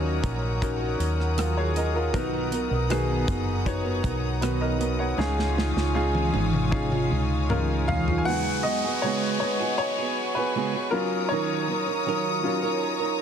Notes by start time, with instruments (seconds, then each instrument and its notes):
Already playing: fingered electric bass D#2, upright piano A#2 C#4 D#4 F#4 G#4 A#4 C#5, nylon-string guitar D#3 F#3 C#4 F#4 A#4, string section C#5 F#5 A#5 D#6
0.22 fingered electric bass A#1, nylon-string guitar F#3 C#4 F#4 A#4, kick, closed hi-hat
0.62 upright piano C#4 D#4 F#4 A#4, kick, closed hi-hat
0.79 nylon-string guitar C#4 F#4 A#4
0.98 fingered electric bass D#2, nylon-string guitar F#3 C#4 F#4 A#4, closed hi-hat
1.20 cross-stick
1.36 nylon-string guitar D#3 F#3 C#4 F#4 A#4, upright piano F4 A#4, cross-stick, closed hi-hat
1.57 upright piano G#4 C#5
1.74 nylon-string guitar F#3 C#4 F#4 A#4, upright piano A#4 D#5, closed hi-hat
1.93 nylon-string guitar C#4 F#4 A#4, upright piano F4 A#4
2.13 fingered electric bass B1, nylon-string guitar B2 D#3 F#3 B3 D#4 A#4, upright piano B3 D#4 F#4 A#4, string section B3 F#5 A#5, kick, closed hi-hat
2.50 nylon-string guitar F#3 B3 D#4 A#4, closed hi-hat
2.70 fingered electric bass B1, nylon-string guitar F#3 B3 D#4 A#4
2.89 nylon-string guitar B2 D#3 F#3 B3 D#4 A#4, upright piano B3 D#4 F#4 G#4, cross-stick, closed hi-hat
3.26 fingered electric bass F#1, nylon-string guitar F#3 B3 D#4 A#4, kick, closed hi-hat
3.66 upright piano B3 D#4 F#4 C#5, kick, closed hi-hat
3.83 nylon-string guitar F#3 B3 D#4 A#4
4.03 fingered electric bass B1, nylon-string guitar F#3 B3 D#4 A#4, kick, closed hi-hat
4.41 nylon-string guitar B2 D#3 F#3 B3 D#4 A#4, upright piano F#4 B4, cross-stick, closed hi-hat
4.61 upright piano A#4 D#5
4.79 nylon-string guitar F#3 B3 D#4 A#4, closed hi-hat
4.97 nylon-string guitar F#3 B3 D#4 A#4, upright piano C#5 F#5
5.17 fingered electric bass C#2, upright piano G#2 C#4 D#4 F4 G#4, nylon-string guitar C#3 G#3 D#4 F4 G#4, string section C#5 F5 G#5, snare
5.39 snare
5.55 nylon-string guitar G#3 D#4 F4 G#4, snare
5.74 fingered electric bass C#2, nylon-string guitar D#4 F4 G#4, snare
5.94 nylon-string guitar C#3 G#3 D#4 F4 G#4, upright piano C#4 D#4 F4 G#4
6.15 high tom
6.32 fingered electric bass G#1, nylon-string guitar G#3 D#4 F4 G#4, high tom
6.53 mid tom
6.71 upright piano C#4 D#4 F4 G#4, kick, mid tom
6.90 nylon-string guitar D#4 F4 G#4, mid tom
7.10 fingered electric bass C#2, nylon-string guitar G#3 D#4 F4 G#4
7.49 nylon-string guitar C#3 G#3 D#4 F4 G#4, upright piano C#4 D#4 F4 A#4, mid tom
7.88 nylon-string guitar G#3 D#4 F4 G#4, upright piano F5, floor tom
8.07 nylon-string guitar D#4 F4 G#4, floor tom
8.18 upright piano G#5
8.25 nylon-string guitar C#3 G#3 B3 F#4 G#4, upright piano F#3 B3 D#4 F#5, string section B4 G#5 C#6, downlifter
8.63 nylon-string guitar G#3 B3 F#4, upright piano D#5
8.68 nylon-string guitar G#4
8.84 nylon-string guitar B3 F#4 G#4
9.02 nylon-string guitar C#3 G#3 B3 F#4 G#4, upright piano C#5
9.40 nylon-string guitar G#3 B3 F#4, upright piano C#5
9.45 nylon-string guitar G#4
9.60 nylon-string guitar B3 F#4 G#4
9.78 upright piano C#5
9.98 nylon-string guitar B3 F#4 G#4
10.35 nylon-string guitar F#4 G#4, upright piano B4
10.39 nylon-string guitar B3
10.55 nylon-string guitar C#3 G#3 B3 F#4 G#4
10.74 nylon-string guitar B3 F#4 G#4
10.91 upright piano F#3 C#4 F4 A#4, nylon-string guitar F#3 C#4, string section C#5 A#5 D#6
10.95 nylon-string guitar D#4 A#4
11.29 nylon-string guitar D#3 F#3 C#4 D#4, upright piano C#5
11.33 nylon-string guitar A#4
11.68 nylon-string guitar F#3 C#4 D#4 A#4
11.87 nylon-string guitar C#4 D#4 A#4
12.06 nylon-string guitar D#3 F#3 C#4 D#4 A#4
12.43 nylon-string guitar F#3 C#4 D#4 A#4, upright piano F#3 C#4 F4
12.62 nylon-string guitar C#4 D#4 A#4
13.00 nylon-string guitar C#4 D#4 A#4